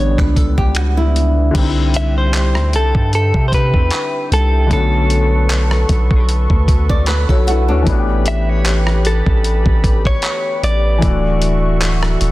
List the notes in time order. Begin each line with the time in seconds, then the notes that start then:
Already playing: A1 D3 G3 B3 D4 C#5
0.18 C#2 B4, finger snap, kick
0.36 A4, kick, closed hi-hat
0.58 G4, kick
0.75 F#4, finger snap, closed hi-hat
0.97 E4
1.16 closed hi-hat
1.51 D3 G3 G4 E5 G5, kick, closed hi-hat, crash
1.55 C2 C4
1.61 D#4
1.67 E4
1.94 E5, closed hi-hat
2.18 C5
2.34 clap, closed hi-hat
2.55 D2, cross-stick
2.73 C2 A4, closed hi-hat
2.95 G2, kick
3.13 A4, closed hi-hat
3.34 C3, kick
3.48 C5
3.52 B4, kick, closed hi-hat
3.74 E2, kick
3.91 clap, closed hi-hat
4.32 C2 A4, closed hi-hat
4.67 D3 A3 C#6
4.71 B1 B3 C#4 A4 B4, kick, closed hi-hat
4.76 F#4
5.10 closed hi-hat
5.50 clap, closed hi-hat
5.71 cross-stick
5.89 B1, kick, closed hi-hat
6.11 kick
6.29 closed hi-hat
6.50 D2, kick
6.68 kick, closed hi-hat
6.89 D5, kick
7.06 B4, clap, closed hi-hat
7.29 B1 F#4 A4 C#5, kick
7.47 E4 F#4 A4, closed hi-hat
7.68 D2 C#4 D4 F#4
7.82 E3 A3 G4 B5
7.87 A1 B3 D4, kick, closed hi-hat
7.92 F#4
7.99 G4
8.26 E5, closed hi-hat
8.49 C#5
8.66 clap, closed hi-hat
8.87 cross-stick
9.05 A4, closed hi-hat
9.26 A1, kick
9.44 closed hi-hat
9.66 A1, kick
9.84 kick, closed hi-hat
10.05 C#5, kick
10.22 clap, closed hi-hat
10.63 A1 D5, closed hi-hat
10.98 E3 A3 F#4 E5 C#6
11.02 D4 E4, kick, closed hi-hat
11.08 F#4
11.42 closed hi-hat
11.82 clap, closed hi-hat
12.03 cross-stick
12.21 D1, closed hi-hat